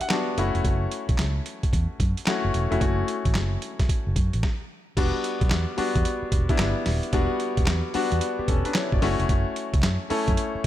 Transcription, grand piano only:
Already playing: G3 B3 D4 F#4 E5
0.01 F#5
0.10 G3 B3 D4 F#4 A5
0.38 A3 C#4 E4 F#4 B5
2.27 A3 C#4 E4 F#4
2.71 A3 C#4 E4 F#4
2.80 A3 C#4 E4 F#4
4.97 G3 B3 D4 F#4
5.77 G3 B3 D4 F#4
6.49 G3 B3 D4 E4
7.13 G3 B3 D4 F#4
7.94 G3 B3 D4 F#4
8.39 B3 G4
8.49 C#4 A4
8.65 D4 B4
8.75 E4 C#5
8.93 F#4 D5
9.02 A3 C#4 E4 F#4
10.10 A3 C#4 E4 A4

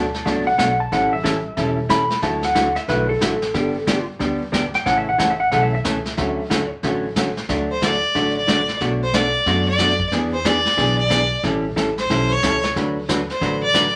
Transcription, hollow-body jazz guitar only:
0.25 B2 F#3 A3 D4 F#4
0.58 B2 F#3 A3 D4 F#4
0.92 E3 G3 C#4 E4 A4
1.23 E3 G3 C#4 E4 A4
1.57 E3 G3 C#4 E4 A4
1.89 E3 G3 C#4 E4 A4
2.22 D3 F#3 A3 E4 F#4
2.55 D3 F#3 A3 E4 F#4
2.89 D3 F#3 A3 E4 F#4
3.21 D3 F#3 A3 E4 F#4
3.54 D3 G3 B3 D4 G4
3.87 D3 G3 B3 D4 G4
4.19 D3 G3 B3 D4 G4
4.52 D3 G3 B3 D4 G4
4.86 C#3 E3 A3 C#4 A4
5.18 C#3 E3 A3 C#4 A4
5.53 C#3 E3 A3 C#4 A4
5.84 C#3 E3 A3 C#4 A4
6.18 D3 F#3 A3 C#4 F#4
6.50 D3 F#3 A3 C#4 F#4
6.84 D3 F#3 A3 C#4 F#4
7.17 D3 F#3 A3 C#4 F#4
7.49 D3 F#3 A3 D4 F#4
7.82 D3 F#3 A3 D4 F#4
8.15 D3 F#3 A3 D4 F#4
8.47 D3 F#3 A3 D4 F#4
8.81 B2 F#3 A3 D4 F#4
9.14 B2 F#3 A3 D4 F#4
9.47 B2 F#3 A3 D4 F#4
9.80 B2 F#3 A3 D4 F#4
10.13 E3 B3 D4 G#4
10.45 E3 B3 D4 G#4
10.77 E3 B3 D4 G#4
11.10 E3 B3 D4 G#4
11.43 E3 G3 C#4 E4 A4
11.76 E3 G3 C#4 E4 A4
12.10 E3 G3 C#4 E4 A4
12.43 E3 G3 C#4 E4 A4
12.76 D3 F#3 A3 D4 F#4 B4
13.09 D3 F#3 A3 D4 F#4 B4
13.41 D3 F#3 A3 D4 F#4 B4
13.74 D3 F#3 A3 D4 F#4 B4

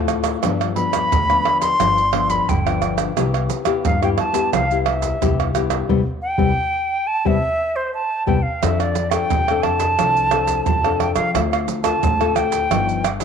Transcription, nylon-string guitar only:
Already playing: A2 A3 C4 F4
0.43 G2 F3 B3 D4
0.77 F3 B3 D4
1.13 D3
1.29 F3 B3 D4
1.80 G2 F3 B3 D4
2.13 F3 B3 D4
2.49 D3
2.66 F3 B3 D4
3.17 C3 B3 E4 G4
3.66 B3 E4 G4
3.85 G2
4.02 B3 E4 G4
4.33 B3 E4 G4
4.54 C3
4.71 B3 E4 G4
5.22 G2 B3 E4 G4
5.55 B3 E4 G4
5.89 G3 B3 C4
6.38 G3 B3 C4
7.25 G3 B3 C4
8.27 G3 B3 C4
8.62 F3 C4 D4 A4
9.12 C4 D4 A4
9.33 C3
9.50 C4 D4 A4
10.00 F3 C4 D4 A4
10.32 C4 D4 A4
10.68 C3
10.86 C4 D4 A4
11.35 D3 C4 F4 A4
11.84 C4 F4 A4
12.03 A2
12.21 C4 F4 A4
12.72 G2 F3 B3 D#4
13.21 F3

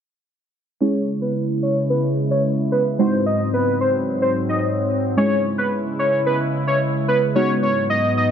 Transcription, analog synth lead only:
0.81 C#5
1.22 B4
1.63 C#5
1.90 B4
2.31 C#5
2.72 B4
2.99 C5
3.26 D#5
3.54 B4
3.81 C5
4.22 C5
4.49 D#5
5.17 C#5
5.58 B4
5.99 C#5
6.26 B4
6.67 C#5
7.08 B4
7.35 C#5
7.63 C#5
7.90 D#5
8.17 D#5

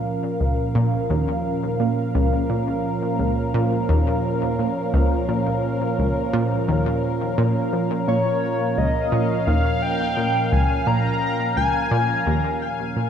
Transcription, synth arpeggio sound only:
0.40 C#2
0.75 A#2
1.10 D#2
1.80 A#2
2.15 C#2
2.50 A#2
3.19 C#2
3.54 A#2
3.89 D#2
4.59 A#2
4.94 C#2
5.29 A#2
5.99 C#2
6.33 A#2
6.68 D#2
7.38 A#2
7.73 F3
8.08 A#2
8.78 C#2
9.12 A#2
9.47 D#2
10.17 A#2
10.52 C#2
10.87 A#2
11.57 C#2
11.91 A#2
12.26 D#2
12.96 A#2

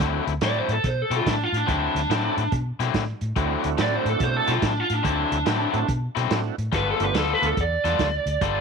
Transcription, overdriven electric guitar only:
0.00 D3 F#3 C4 E4
0.42 D3 F#3 C4 E4
1.11 D3 F#3 C4 E4
1.67 D3 F#3 C4 E4
2.10 D3 F#3 C4 E4
2.80 D3 F#3 C4 E4
3.36 D3 F#3 C4 E4
3.78 D3 F#3 C4 E4
4.47 D3 F#3 C4 E4
5.03 D3 F#3 C4 E4
5.46 D3 F#3 C4 E4
6.15 D3 F#3 C4 E4
6.72 G3 B3 F4 A4
7.14 G3 B3 F4 A4
7.84 G3 B3 F4 A4
8.42 G3 B3 F4 A4

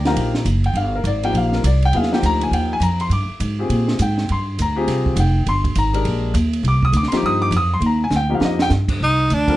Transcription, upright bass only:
Already playing: D2
0.16 A#1
0.45 F#1
0.73 G1
1.04 G#1
1.33 A#1
1.64 C2
1.93 D#2
2.22 D2
2.51 D#2
2.80 F2
3.09 G2
3.29 muted upright bass stroke
3.40 G#2
3.69 A#2
3.99 G#2
4.30 G2
4.59 D2
4.87 C2
5.16 F1
5.46 G1
5.76 G#1
6.05 A#1
6.34 D#2
6.63 C2
6.93 D2
7.12 muted upright bass stroke
7.23 G2
7.51 F2
7.80 D#2
8.10 D2
8.40 F2
8.70 G2
9.00 C2
9.30 D2

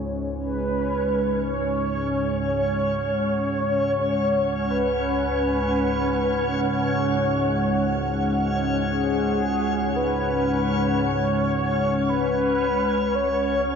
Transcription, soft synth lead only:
0.40 B4
1.45 C#5
2.55 C#5
4.70 B4
6.83 C#5
8.91 G#4
9.96 B4
11.01 C#5
12.09 B4
13.15 C#5

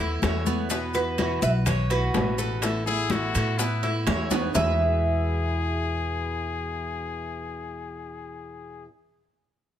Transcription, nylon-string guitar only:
0.00 A3 B3 E4
0.22 E3 A3 B3 E4
0.70 B2 E3 B3 E4 F#4
0.94 B3 E4 F#4
1.18 B2 E3 B3 E4 F#4
1.41 B3 E4 F#4
1.66 muted nylon-string guitar stroke
1.90 B3 E4 F#4
2.14 B2 E3 B3 E4 F#4
2.62 E3 A3 B3 E4
2.86 A3 B3 E4
3.10 E3 A3 B3 E4
3.35 A3 B3 E4
3.59 muted nylon-string guitar stroke
3.83 A3 B3 E4
4.07 E3 A3 B3 E4
4.53 E2 B2 E3 G#3 B3 E4

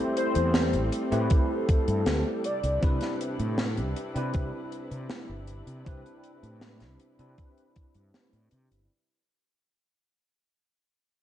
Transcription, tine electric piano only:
Already playing: A3 C4 E4 G4 B4 C5
1.11 A3 C4 E4 G4 B4
2.81 C4 D4 E4 G4 B4
4.14 C4 D4 E4 G4 B4
5.85 C4 D4 E4 G4 B4
7.19 C4 D4 E4 G4 B4

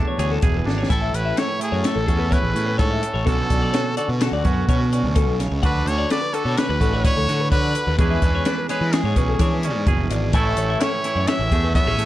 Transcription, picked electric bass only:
0.18 D2
0.43 E1
0.65 G#1
0.90 A1
1.13 A1
1.72 F#2
1.96 A1
2.08 E2
2.43 A1
2.55 A2
3.14 A1
3.27 B1
3.50 B1
4.09 B2
4.32 D2
4.45 F#2
4.69 B2
5.03 D2
5.27 B1
5.51 C#2
5.63 D2
5.86 D2
6.45 B2
6.69 D2
6.81 A1
7.17 D2
7.29 D3
7.87 D#2
7.99 E2
8.22 E2
8.81 E3
9.04 G#2
9.16 B1
9.39 E3
9.75 G#2
9.87 F#1
10.10 G#1
10.33 A1
10.56 A1
11.16 F#2
11.39 A1
11.51 E2
11.86 A1
11.98 A2

